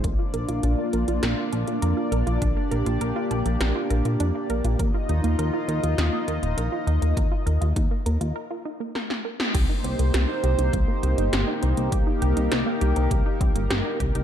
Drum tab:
CC |----------------|----------------|----------------|----------------|
HH |x-xxx-xxx-xxx-xx|x-xxx-xxx-xxx-xx|x-xxx-xxx-xxx-xx|x-xxx-xx--------|
SD |--------o-------|--------o-------|--------o-------|------------oo-o|
BD |o---------------|o---------------|o---------------|o---o-----------|

CC |x---------------|----------------|
HH |x-xxx-xxx-xxx-xx|x-xxx-xxx-xxx-xx|
SD |----o-------o---|----o-------o---|
BD |o-------o-------|o-------o-o---o-|